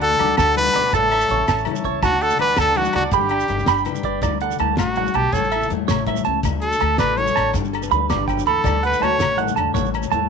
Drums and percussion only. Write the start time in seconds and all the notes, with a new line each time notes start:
0.01 closed hi-hat
0.11 low conga, shekere
0.19 closed hi-hat, high conga, low agogo
0.29 low conga
0.37 snare, closed hi-hat, low agogo, shekere
0.56 closed hi-hat, high conga, low conga
0.66 low conga, shekere
0.74 snare, closed hi-hat, low conga, low agogo, shekere
0.93 kick, closed hi-hat, high conga, shekere
1.02 low conga
1.12 closed hi-hat, low agogo
1.21 shekere
1.28 closed hi-hat, high conga
1.37 low conga
1.47 snare, closed hi-hat, low conga, low agogo, shekere
1.58 shekere
1.65 closed hi-hat, high conga, low conga, low agogo
1.76 shekere
1.84 kick, closed hi-hat
2.02 kick, closed hi-hat, high conga, low conga, low agogo, shekere
2.21 closed hi-hat, shekere
2.30 low conga, shekere
2.39 closed hi-hat, high conga, low agogo
2.49 shekere
2.57 snare, closed hi-hat, low agogo, shekere
2.66 low conga, shekere
2.75 closed hi-hat, high conga, shekere
2.85 shekere
2.93 closed hi-hat, low conga, low agogo
3.12 kick, closed hi-hat, high conga, shekere
3.21 low conga
3.29 closed hi-hat, low agogo
3.40 shekere
3.48 closed hi-hat, high conga, shekere
3.57 low conga, shekere
3.66 snare, closed hi-hat, low agogo, shekere
3.77 shekere
3.85 closed hi-hat, high conga, low conga, low agogo, shekere
3.96 low conga, shekere
4.03 kick, closed hi-hat
4.22 kick, closed hi-hat, high conga, low conga, low agogo, shekere
4.41 closed hi-hat
4.51 low conga, shekere
4.59 closed hi-hat, high conga, low agogo
4.77 snare, closed hi-hat, low conga, low agogo, shekere
4.96 closed hi-hat, high conga
5.06 low conga, shekere
5.14 closed hi-hat, low agogo
5.24 low conga
5.32 kick, closed hi-hat, high conga, low conga, shekere
5.44 shekere
5.52 closed hi-hat, low agogo
5.61 low conga, shekere
5.70 closed hi-hat, high conga, low conga, shekere
5.88 snare, closed hi-hat, low conga, low agogo, shekere
6.00 low conga
6.06 kick, closed hi-hat, high conga, low agogo
6.16 low conga, shekere
6.25 closed hi-hat
6.35 low conga
6.43 kick, closed hi-hat, high conga, low conga, low agogo, shekere
6.62 closed hi-hat
6.72 low conga, shekere
6.80 closed hi-hat, low agogo
6.98 snare, closed hi-hat, low conga, low agogo, shekere
7.17 closed hi-hat, high conga
7.26 low conga, shekere
7.37 snare, closed hi-hat, low agogo
7.45 low conga
7.54 kick, closed hi-hat, high conga, low conga, shekere
7.64 shekere
7.74 closed hi-hat, low agogo
7.82 low conga, shekere
7.91 closed hi-hat, high conga, low conga, shekere
8.10 snare, closed hi-hat, low conga, low agogo, shekere
8.19 low conga
8.28 kick, closed hi-hat, low agogo, shekere
8.37 low conga, shekere
8.47 closed hi-hat
8.56 low conga
8.64 kick, closed hi-hat, high conga, low conga, low agogo, shekere
8.84 closed hi-hat
8.91 low conga, shekere
9.00 closed hi-hat, high conga, low agogo
9.18 snare, closed hi-hat, low conga, shekere
9.22 low agogo
9.37 closed hi-hat, high conga
9.47 low conga, shekere
9.57 closed hi-hat, low agogo
9.65 low conga
9.74 kick, closed hi-hat, high conga, low conga, shekere
9.85 shekere
9.94 closed hi-hat, low agogo
10.03 low conga, shekere
10.12 closed hi-hat, high conga, low conga, shekere